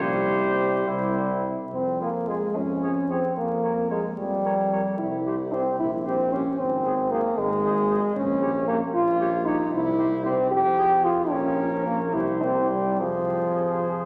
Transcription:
0.01 C2 G3 C4 G4 C5
0.87 C2 G3 E4
1.73 F2 C4
2.01 F3 A#3 F4 G#4
2.28 F3 G#3 F4 G#4
2.56 F2 C#4
2.83 F3 G#4 C#5
3.10 F3 C4 G#4 C#5
3.37 F2 A#3
3.64 G3 A#4 C#5
3.90 G3 G#3 A#4 C#5
4.18 F2 G3
4.45 G3 A#4 C#5
4.72 G3 A#4 C#5
4.99 C2 E4
5.26 G3 G4 C5
5.52 G3 C4 G4 C5
5.79 A#1 E4
6.06 G3 C4 G4 C5
6.32 G3 C#4 G4 C5
6.59 G#1 C4
6.85 F3 G#4 C5
7.11 F3 A#3 G#4 C5
7.38 G#1 G#3
7.64 F3 G#4 C5
7.90 F3 G#4 C5
8.16 A#1 C#4
8.42 G3 G4 C#5
8.68 G3 A#3 G4 C#5
8.94 A#1 F4
9.19 G3 G4 C#5
9.46 G3 D#4 G4 C#5
9.72 C2 E4
9.99 G3 G4 C5
10.25 G3 C4 G4 C5
10.51 F2 G4
10.78 F3 G#4 C5
11.04 F3 F4 G#4 C5
11.30 A#1 F3 C#4 A#4 C#5
11.86 A#3
12.13 C2 C3 E4 G4 C5
12.42 C4
12.70 G3
12.99 F2 C3 F3 G#4 C5

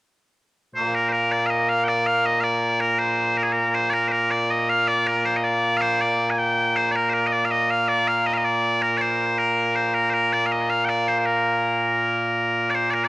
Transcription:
0.75 A#2 A#3 C5
0.95 A#4
1.09 A#4 C5
1.32 D5
1.46 D#5 F5
1.69 F5
1.84 G5
1.88 D5
2.07 F5
2.26 D#5
2.40 D5 F5
2.80 A#4
2.99 C5
3.37 A#4
3.43 G#4
3.52 A#4
3.75 C5
3.90 A#4 D5
4.08 A#4 C5
4.31 D5
4.51 D#5
4.69 F5
4.88 D5
5.07 A#4
5.26 C5
5.36 D#5
5.44 D5
5.77 F5
5.81 C5
6.01 D5
6.30 G#5
6.38 G5
6.76 C5
6.91 D5
6.96 A#4
7.10 A#4 C5
7.27 D#5
7.33 D5
7.45 F5
7.51 D#5
7.71 F5
7.88 D5
8.08 F5
8.26 D#5
8.33 D#5 F5
8.45 D5
8.82 A#4
8.97 C5 D5
9.38 A#4
9.76 C5
9.94 A#4
10.10 A#4 C5
10.33 D5
10.46 F5
10.52 D#5
10.70 F5
10.85 G5
10.89 D5
11.08 C5
11.18 C5
11.26 A#4
12.70 D5
12.74 C5
12.90 A#4 D5
13.04 D5

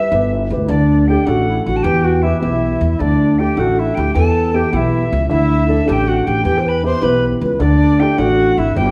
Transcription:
Already playing: G3 G4 B4 E5
0.11 G1 E4 G4 B4
0.50 D2 E4 G4 B4
0.61 E4
0.68 D2 D3 D4 D5
1.08 D4 E4 G4 A4 G5
1.26 A1 D4 E4 F#4 A4 F#5
1.49 E4
1.66 A1 F#4 F#5
1.76 A5
1.83 E2 E3 G4 G5
2.04 F#4
2.22 B3 E4 G4 E5
2.41 B1 B3 E4 G4 E5
2.81 E2
2.93 E4
2.99 D2 D3 D4 D5
3.38 D4 E4 G4 A4 G5
3.56 A1 D4 E4 F#4 A4 F#5
3.79 E4 E5
3.95 D2 G5
3.99 G4
4.14 E2 E3 A4 A5
4.53 B3 E4 G4 G5
4.71 B1 B3 E4 G4 F#5
4.77 E5
5.12 C#2
5.29 D2 D3 E4 E5
5.68 D4 E4 A4
5.86 A1 D4 E4 G4 A4 A5
5.93 G5
6.08 F#4 F#5
6.26 A1 G4 G5
6.44 E2 E3 G4 G5
6.58 C5
6.66 B4 B5
6.83 B3 E4 G4 C5 C6
7.01 B1 B3 E4 G4 B4 B5
7.42 C#2 B4
7.60 D2 D3 D4 D5
7.99 D4 E4 G4 A4 G5
8.17 A1 D4 E4 F#4 A4 F#5
8.58 G#1 E4 E5
8.76 G1 G3 G4 G5

